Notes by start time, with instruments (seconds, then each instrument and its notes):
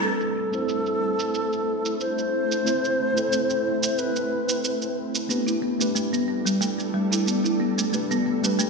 Already playing: ambient pad D4 A4
0.00 tine electric piano A3 C4 E4 B4, ambient pad A3, native american-style wooden flute A4, shaker
0.14 ambient pad E4
0.21 shaker
0.51 tine electric piano A3 C4 E4 C5, shaker
0.69 shaker
0.86 shaker
1.14 ambient pad C4
1.19 shaker
1.34 shaker
1.53 shaker
1.85 shaker
2.01 native american-style wooden flute C5, shaker
2.18 shaker
2.52 shaker
2.65 tine electric piano A3 C4 E4 C5, shaker
2.85 shaker
3.14 tine electric piano A3 C4 E4, shaker
3.18 tine electric piano A4
3.33 shaker
3.50 shaker
3.83 shaker
3.98 native american-style wooden flute B4, shaker
4.16 shaker
4.49 shaker
4.64 shaker
4.82 shaker
5.15 shaker
5.29 ambient pad G3, tine electric piano A3 D4 G4 B4, marimba B3, shaker
5.47 marimba E4, shaker
5.61 marimba B3, ambient pad D4
5.68 ambient pad A4
5.78 tine electric piano A3 D4 G4 B4, marimba A3, shaker
5.95 marimba A3, shaker
6.13 marimba B3, shaker
6.28 marimba B3
6.46 marimba G3, shaker
6.61 marimba A3, shaker
6.79 marimba A3, shaker
6.94 marimba G3
7.12 marimba E4, shaker
7.27 marimba B3, shaker
7.45 marimba E4, shaker
7.60 marimba B3
7.78 marimba A3, shaker
7.92 tine electric piano A3 D4 G4 B4, marimba A3, shaker
8.11 marimba B3, shaker
8.26 marimba B3
8.42 marimba G3, tine electric piano A3 D4 G4, shaker
8.46 tine electric piano B4
8.59 marimba A3, shaker